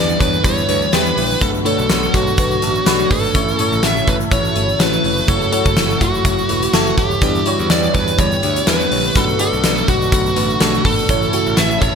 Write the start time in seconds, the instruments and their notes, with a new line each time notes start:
Already playing: picked electric bass E2, analog synth pad D3 E3 G3 B3 E4, fm electric piano E3 G3 D4 E4 B4, lead electric guitar D5
0.09 shaker
0.20 picked electric bass E2, fm electric piano G3 D4 E4 C#5, lead electric guitar B4, kick, closed hi-hat, shaker
0.33 shaker
0.44 picked electric bass E2, fm electric piano G3 D4 E4 B4, lead electric guitar C#5, kick, closed hi-hat, shaker
0.57 shaker
0.68 picked electric bass D2, fm electric piano G3 D4 E4 B4, closed hi-hat
0.82 shaker
0.93 picked electric bass E2, fm electric piano G3 D4 E4 G4, lead electric guitar B4, snare, closed hi-hat, shaker
1.06 shaker
1.17 picked electric bass A#1, fm electric piano G3 D4 E4 B4, open hi-hat
1.30 shaker
1.41 picked electric bass B1, fm electric piano B2 A3 D4 F#4 B4, analog synth pad D3 F#3 A3 F#4, lead electric guitar A4, kick, closed hi-hat, shaker
1.54 shaker
1.65 fm electric piano A3 D4 F#4 C#5, lead electric guitar A4, closed hi-hat
1.79 picked electric bass B1, shaker
1.90 picked electric bass B1, fm electric piano A3 D4 F#4 B4, snare, closed hi-hat, shaker
2.03 shaker
2.13 picked electric bass B1, fm electric piano A3 D4 F#4 A4, lead electric guitar F#4, kick, closed hi-hat, shaker
2.27 shaker
2.38 picked electric bass B1, fm electric piano A3 D4 F#4 B4, kick, closed hi-hat, shaker
2.51 shaker
2.62 picked electric bass A1, fm electric piano A3 D4 F#4 A4, closed hi-hat
2.75 shaker
2.86 picked electric bass B1, fm electric piano A3 D4 F#4 B4, snare, closed hi-hat, shaker
2.99 shaker
3.10 picked electric bass G#1, fm electric piano A3 D4 F#4 B4, lead electric guitar A4, kick, open hi-hat
3.24 shaker
3.34 picked electric bass A1, fm electric piano A2 A3 C#4 E4 C#5, analog synth pad C#3 E3 E4 A4, kick, closed hi-hat, shaker
3.48 shaker
3.59 fm electric piano A3 C#4 E4 C#5, closed hi-hat
3.72 picked electric bass A1, shaker
3.83 picked electric bass A1, fm electric piano A3 C#4 E4 F#4, lead electric guitar E5, snare, closed hi-hat, shaker
3.97 shaker
4.07 picked electric bass A1, fm electric piano A3 C#4 E4 E5, lead electric guitar B4, kick, closed hi-hat, shaker
4.20 shaker
4.31 picked electric bass A1, fm electric piano A3 C#4 E4 C#5, lead electric guitar C#5, kick, closed hi-hat, shaker
4.45 shaker
4.55 picked electric bass G1, fm electric piano A3 C#4 E4 C#5, closed hi-hat
4.69 shaker
4.80 picked electric bass A1, fm electric piano A3 C#4 E4 F#4, lead electric guitar B4, snare, closed hi-hat, shaker
4.93 shaker
5.04 picked electric bass F1, fm electric piano A3 C#4 E4 C#5, open hi-hat
5.17 shaker
5.28 picked electric bass F#1, analog synth pad F#3 A3 F#4, fm electric piano A3 E4 F#4 C#5, lead electric guitar A4, kick, closed hi-hat, shaker
5.42 shaker
5.52 fm electric piano A3 E4 F#4 C#5, lead electric guitar A4, closed hi-hat
5.66 picked electric bass F#1, kick, shaker
5.76 picked electric bass F#1, fm electric piano A3 E4 F#4 C#5, snare, closed hi-hat, shaker
5.90 shaker
6.00 picked electric bass F#1, fm electric piano A3 E4 F#4 C#5, lead electric guitar F#4, kick, closed hi-hat, shaker
6.14 shaker
6.24 picked electric bass F#1, fm electric piano A3 E4 F#4 C#5, kick, closed hi-hat, shaker
6.38 shaker
6.49 picked electric bass E1, fm electric piano A3 E4 F#4 B4, closed hi-hat
6.62 closed hi-hat, shaker
6.73 picked electric bass F#1, fm electric piano A3 E4 F#4 A4, snare, closed hi-hat, shaker
6.86 shaker
6.97 picked electric bass D#1, fm electric piano A3 E4 F#4 A4, lead electric guitar G4, kick, closed hi-hat
7.11 shaker
7.22 picked electric bass E2, analog synth pad D3 G3 B3 E4 G4, fm electric piano E3 G3 D4 E4 B4, kick, closed hi-hat, shaker
7.35 shaker
7.46 fm electric piano G3 D4 E4 C#5, lead electric guitar F#4, closed hi-hat
7.59 picked electric bass E2, shaker
7.70 picked electric bass E2, fm electric piano G3 D4 E4 B4, lead electric guitar D5, snare, closed hi-hat, shaker
7.83 shaker
7.94 picked electric bass E2, fm electric piano G3 D4 E4 B4, lead electric guitar B4, kick, closed hi-hat, shaker
8.08 closed hi-hat, shaker
8.18 picked electric bass E2, fm electric piano G3 D4 E4 B4, lead electric guitar C#5, kick, closed hi-hat, shaker
8.32 shaker
8.43 picked electric bass D2, fm electric piano G3 D4 E4 G4, closed hi-hat
8.56 closed hi-hat, shaker
8.67 picked electric bass E2, fm electric piano G3 D4 E4 B4, lead electric guitar B4, snare, closed hi-hat, shaker
8.80 shaker
8.91 picked electric bass A#1, fm electric piano G3 D4 E4 C#5, open hi-hat
9.04 shaker
9.15 picked electric bass B1, fm electric piano B2 A3 D4 F#4 B4, analog synth pad D3 F#3 A3 F#4, lead electric guitar A4, kick, closed hi-hat, shaker
9.29 shaker
9.39 fm electric piano A3 D4 F#4 D5, lead electric guitar A4, closed hi-hat
9.53 picked electric bass B1, shaker
9.64 picked electric bass B1, fm electric piano A3 D4 F#4 D5, snare, closed hi-hat, shaker
9.77 shaker
9.88 picked electric bass B1, fm electric piano A3 D4 F#4 D5, lead electric guitar F#4, kick, closed hi-hat, shaker
10.02 shaker
10.12 picked electric bass B1, fm electric piano A3 D4 F#4 B4, kick, closed hi-hat, shaker
10.26 shaker
10.36 picked electric bass A1, fm electric piano A3 D4 F#4 B4, closed hi-hat
10.50 shaker
10.60 picked electric bass B1, fm electric piano A3 D4 F#4 A4, snare, closed hi-hat, shaker
10.74 shaker
10.85 picked electric bass G#1, fm electric piano A3 D4 F#4 B4, lead electric guitar A4, kick, open hi-hat
10.98 shaker
11.09 picked electric bass A1, fm electric piano A2 A3 C#4 E4 C#5, analog synth pad C#3 E3 A3 E4 A4, kick, closed hi-hat, shaker
11.22 shaker
11.33 fm electric piano A3 C#4 E4 F#4, closed hi-hat
11.46 picked electric bass A1, shaker
11.57 picked electric bass A1, fm electric piano A3 C#4 E4 B4, lead electric guitar E5, snare, closed hi-hat, shaker
11.71 shaker
11.81 picked electric bass A1, fm electric piano A3 C#4 E4 C#5, lead electric guitar C#5, kick, closed hi-hat, shaker